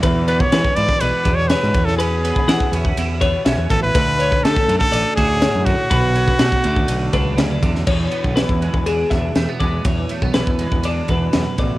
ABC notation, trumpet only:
X:1
M:4/4
L:1/16
Q:1/4=122
K:Emix
V:1 name="Trumpet"
z2 B c3 d2 B3 c B3 A | G8 z6 A B- | B4 A3 A3 G4 F2- | F12 z4 |
z16 | z16 |]